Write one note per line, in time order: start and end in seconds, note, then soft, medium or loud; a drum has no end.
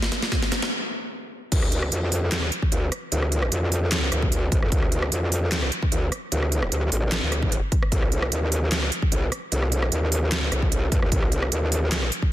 0.02 snare medium
0.12 snare loud
0.12 closed hi-hat medium
0.22 snare medium
0.32 kick loud
0.32 snare medium
0.42 snare medium
0.52 snare loud
0.52 closed hi-hat medium
0.62 snare medium
1.52 1.90 D2 medium
1.52 kick loud
1.52 closed hi-hat medium
1.52 crash loud
1.62 cross-stick medium
1.72 closed hi-hat medium
1.82 cross-stick medium
1.92 2.33 F2 medium
1.92 closed hi-hat medium
2.12 open hi-hat medium
2.32 2.50 E2 medium
2.32 snare loud
2.32 clap medium
2.32 closed hi-hat medium
2.42 cross-stick medium
2.52 closed hi-hat medium
2.62 kick medium
2.72 2.90 D2 medium
2.72 closed hi-hat medium
2.92 cross-stick soft
2.92 closed hi-hat medium
3.12 3.50 D2 medium
3.12 closed hi-hat medium
3.22 cross-stick medium
3.32 closed hi-hat medium
3.42 cross-stick medium
3.52 4.10 F2 medium
3.52 closed hi-hat medium
3.72 open hi-hat medium
3.92 snare loud
3.92 clap medium
3.92 closed hi-hat medium
4.12 4.50 D2 loud
4.12 cross-stick medium
4.12 closed hi-hat medium
4.22 kick medium
4.32 closed hi-hat medium
4.52 4.61 A1 loud
4.52 kick loud
4.52 closed hi-hat medium
4.62 4.70 F2 loud
4.62 cross-stick medium
4.72 5.10 D2 loud
4.72 kick loud
4.72 closed hi-hat medium
4.82 cross-stick medium
4.92 closed hi-hat medium
5.02 cross-stick medium
5.12 5.70 F2 medium
5.12 closed hi-hat medium
5.32 open hi-hat medium
5.52 snare loud
5.52 clap medium
5.52 closed hi-hat medium
5.62 cross-stick medium
5.72 closed hi-hat medium
5.83 kick medium
5.92 6.10 D2 loud
5.92 closed hi-hat medium
6.12 cross-stick medium
6.12 closed hi-hat soft
6.32 6.70 D2 medium
6.32 closed hi-hat medium
6.43 cross-stick medium
6.52 closed hi-hat soft
6.63 cross-stick medium
6.72 6.90 D2 loud
6.72 closed hi-hat medium
6.92 7.21 A1 loud
6.92 open hi-hat medium
7.12 snare loud
7.12 clap medium
7.12 closed hi-hat medium
7.23 7.61 D2 loud
7.32 cross-stick medium
7.32 closed hi-hat medium
7.42 kick medium
7.52 closed hi-hat medium
7.72 kick loud
7.72 closed hi-hat soft
7.83 cross-stick medium
7.92 8.30 C2 medium
7.92 kick loud
7.92 closed hi-hat medium
8.02 cross-stick medium
8.12 closed hi-hat medium
8.22 cross-stick medium
8.32 8.73 D#2 medium
8.32 closed hi-hat medium
8.52 open hi-hat medium
8.72 8.90 D2 medium
8.72 snare loud
8.72 clap medium
8.72 closed hi-hat medium
8.82 cross-stick medium
8.92 closed hi-hat medium
9.02 kick medium
9.12 9.30 C2 medium
9.12 closed hi-hat medium
9.32 cross-stick medium
9.32 closed hi-hat soft
9.52 9.90 C2 loud
9.52 closed hi-hat medium
9.62 cross-stick medium
9.72 closed hi-hat medium
9.82 cross-stick medium
9.92 10.33 D#2 medium
9.92 closed hi-hat medium
10.12 open hi-hat loud
10.32 10.50 D2 medium
10.32 snare loud
10.32 clap medium
10.32 closed hi-hat medium
10.52 10.90 C2 loud
10.52 cross-stick medium
10.52 closed hi-hat medium
10.62 kick medium
10.72 closed hi-hat medium
10.92 11.01 G2 loud
10.92 kick loud
10.92 closed hi-hat medium
11.02 11.10 D#2 loud
11.02 cross-stick medium
11.12 11.50 C2 loud
11.12 kick loud
11.12 closed hi-hat medium
11.23 cross-stick medium
11.32 closed hi-hat medium
11.42 cross-stick medium
11.52 12.10 D#2 loud
11.52 closed hi-hat medium
11.72 open hi-hat loud
11.92 snare loud
11.92 clap medium
11.92 closed hi-hat medium
12.03 cross-stick medium
12.12 closed hi-hat medium
12.22 kick medium